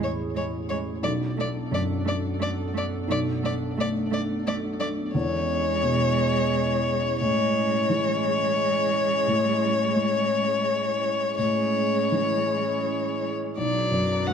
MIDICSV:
0, 0, Header, 1, 5, 480
1, 0, Start_track
1, 0, Tempo, 687285
1, 721, Time_signature, 3, 2, 24, 8
1, 6954, Tempo, 717703
1, 9881, End_track
2, 0, Start_track
2, 0, Title_t, "Violin"
2, 0, Program_c, 0, 40
2, 24, Note_on_c, 0, 73, 45
2, 80, Note_off_c, 0, 73, 0
2, 254, Note_on_c, 0, 73, 44
2, 310, Note_off_c, 0, 73, 0
2, 483, Note_on_c, 0, 73, 47
2, 539, Note_off_c, 0, 73, 0
2, 723, Note_on_c, 0, 74, 56
2, 778, Note_off_c, 0, 74, 0
2, 979, Note_on_c, 0, 74, 40
2, 1035, Note_off_c, 0, 74, 0
2, 1216, Note_on_c, 0, 74, 46
2, 1272, Note_off_c, 0, 74, 0
2, 1453, Note_on_c, 0, 74, 46
2, 1509, Note_off_c, 0, 74, 0
2, 1690, Note_on_c, 0, 74, 48
2, 1746, Note_off_c, 0, 74, 0
2, 1937, Note_on_c, 0, 74, 48
2, 1993, Note_off_c, 0, 74, 0
2, 2171, Note_on_c, 0, 74, 58
2, 2227, Note_off_c, 0, 74, 0
2, 2410, Note_on_c, 0, 74, 45
2, 2466, Note_off_c, 0, 74, 0
2, 2657, Note_on_c, 0, 74, 59
2, 2713, Note_off_c, 0, 74, 0
2, 2886, Note_on_c, 0, 74, 48
2, 2942, Note_off_c, 0, 74, 0
2, 3121, Note_on_c, 0, 74, 51
2, 3177, Note_off_c, 0, 74, 0
2, 3352, Note_on_c, 0, 74, 57
2, 3408, Note_off_c, 0, 74, 0
2, 3592, Note_on_c, 0, 73, 75
2, 5005, Note_off_c, 0, 73, 0
2, 5035, Note_on_c, 0, 73, 74
2, 7877, Note_off_c, 0, 73, 0
2, 7911, Note_on_c, 0, 73, 57
2, 9205, Note_off_c, 0, 73, 0
2, 9376, Note_on_c, 0, 74, 55
2, 9838, Note_on_c, 0, 78, 64
2, 9848, Note_off_c, 0, 74, 0
2, 9881, Note_off_c, 0, 78, 0
2, 9881, End_track
3, 0, Start_track
3, 0, Title_t, "Ambient pad"
3, 0, Program_c, 1, 92
3, 0, Note_on_c, 1, 61, 63
3, 0, Note_on_c, 1, 64, 61
3, 0, Note_on_c, 1, 68, 65
3, 691, Note_off_c, 1, 61, 0
3, 691, Note_off_c, 1, 64, 0
3, 691, Note_off_c, 1, 68, 0
3, 716, Note_on_c, 1, 62, 66
3, 717, Note_on_c, 1, 69, 61
3, 718, Note_on_c, 1, 59, 60
3, 3586, Note_off_c, 1, 62, 0
3, 3587, Note_off_c, 1, 59, 0
3, 3587, Note_off_c, 1, 69, 0
3, 3597, Note_on_c, 1, 64, 62
3, 3598, Note_on_c, 1, 68, 61
3, 3599, Note_on_c, 1, 61, 65
3, 5027, Note_off_c, 1, 64, 0
3, 5027, Note_off_c, 1, 68, 0
3, 5032, Note_off_c, 1, 61, 0
3, 5035, Note_on_c, 1, 64, 65
3, 5035, Note_on_c, 1, 68, 65
3, 5041, Note_on_c, 1, 61, 65
3, 7877, Note_off_c, 1, 64, 0
3, 7877, Note_off_c, 1, 68, 0
3, 7880, Note_off_c, 1, 61, 0
3, 7903, Note_on_c, 1, 64, 62
3, 7907, Note_on_c, 1, 61, 58
3, 7907, Note_on_c, 1, 68, 59
3, 9337, Note_off_c, 1, 64, 0
3, 9339, Note_off_c, 1, 61, 0
3, 9339, Note_off_c, 1, 68, 0
3, 9360, Note_on_c, 1, 66, 61
3, 9363, Note_on_c, 1, 62, 66
3, 9364, Note_on_c, 1, 71, 66
3, 9881, Note_off_c, 1, 62, 0
3, 9881, Note_off_c, 1, 66, 0
3, 9881, Note_off_c, 1, 71, 0
3, 9881, End_track
4, 0, Start_track
4, 0, Title_t, "Cello"
4, 0, Program_c, 2, 42
4, 242, Note_on_c, 2, 56, 40
4, 298, Note_off_c, 2, 56, 0
4, 487, Note_on_c, 2, 56, 45
4, 543, Note_off_c, 2, 56, 0
4, 720, Note_on_c, 2, 57, 50
4, 776, Note_off_c, 2, 57, 0
4, 959, Note_on_c, 2, 57, 48
4, 1015, Note_off_c, 2, 57, 0
4, 1198, Note_on_c, 2, 57, 46
4, 1254, Note_off_c, 2, 57, 0
4, 1431, Note_on_c, 2, 57, 54
4, 1487, Note_off_c, 2, 57, 0
4, 1672, Note_on_c, 2, 57, 49
4, 1728, Note_off_c, 2, 57, 0
4, 1911, Note_on_c, 2, 57, 50
4, 1967, Note_off_c, 2, 57, 0
4, 2152, Note_on_c, 2, 57, 53
4, 2208, Note_off_c, 2, 57, 0
4, 2395, Note_on_c, 2, 57, 48
4, 2451, Note_off_c, 2, 57, 0
4, 2635, Note_on_c, 2, 57, 54
4, 2691, Note_off_c, 2, 57, 0
4, 2869, Note_on_c, 2, 57, 55
4, 2925, Note_off_c, 2, 57, 0
4, 3118, Note_on_c, 2, 57, 51
4, 3173, Note_off_c, 2, 57, 0
4, 3350, Note_on_c, 2, 57, 56
4, 3406, Note_off_c, 2, 57, 0
4, 3594, Note_on_c, 2, 56, 64
4, 5006, Note_off_c, 2, 56, 0
4, 5040, Note_on_c, 2, 56, 67
4, 7879, Note_off_c, 2, 56, 0
4, 7909, Note_on_c, 2, 56, 47
4, 9204, Note_off_c, 2, 56, 0
4, 9369, Note_on_c, 2, 54, 52
4, 9843, Note_on_c, 2, 57, 56
4, 9853, Note_off_c, 2, 54, 0
4, 9881, Note_off_c, 2, 57, 0
4, 9881, End_track
5, 0, Start_track
5, 0, Title_t, "Felt piano"
5, 0, Program_c, 3, 0
5, 0, Control_c, 3, 64, 127
5, 0, Note_on_c, 3, 33, 56
5, 0, Note_on_c, 3, 40, 39
5, 694, Note_off_c, 3, 33, 0
5, 719, Note_on_c, 3, 35, 59
5, 721, Note_off_c, 3, 40, 0
5, 734, Control_c, 3, 64, 0
5, 842, Control_c, 3, 64, 127
5, 1197, Note_on_c, 3, 42, 45
5, 2132, Note_off_c, 3, 35, 0
5, 2151, Note_on_c, 3, 35, 61
5, 2176, Control_c, 3, 64, 0
5, 2277, Control_c, 3, 64, 127
5, 2637, Note_on_c, 3, 57, 46
5, 2733, Note_off_c, 3, 42, 0
5, 3556, Note_off_c, 3, 35, 0
5, 3587, Note_off_c, 3, 57, 0
5, 3593, Note_on_c, 3, 40, 59
5, 3601, Control_c, 3, 64, 0
5, 3726, Control_c, 3, 64, 127
5, 4070, Note_on_c, 3, 47, 52
5, 5005, Note_off_c, 3, 40, 0
5, 5032, Note_off_c, 3, 47, 0
5, 5037, Note_on_c, 3, 45, 66
5, 5043, Control_c, 3, 64, 0
5, 5160, Control_c, 3, 64, 127
5, 5515, Note_on_c, 3, 52, 54
5, 6443, Note_off_c, 3, 45, 0
5, 6476, Note_on_c, 3, 45, 68
5, 6480, Control_c, 3, 64, 0
5, 6602, Control_c, 3, 64, 127
5, 6957, Note_on_c, 3, 56, 50
5, 7046, Note_off_c, 3, 52, 0
5, 7879, Note_off_c, 3, 45, 0
5, 7907, Note_on_c, 3, 45, 53
5, 7916, Control_c, 3, 64, 0
5, 8048, Control_c, 3, 64, 127
5, 8401, Note_on_c, 3, 52, 40
5, 8494, Note_off_c, 3, 56, 0
5, 9339, Note_off_c, 3, 45, 0
5, 9367, Note_off_c, 3, 52, 0
5, 9374, Note_on_c, 3, 35, 54
5, 9377, Control_c, 3, 64, 0
5, 9490, Control_c, 3, 64, 127
5, 9600, Note_on_c, 3, 42, 47
5, 9836, Note_on_c, 3, 54, 42
5, 9881, Note_off_c, 3, 35, 0
5, 9881, Note_off_c, 3, 42, 0
5, 9881, Note_off_c, 3, 54, 0
5, 9881, End_track
0, 0, End_of_file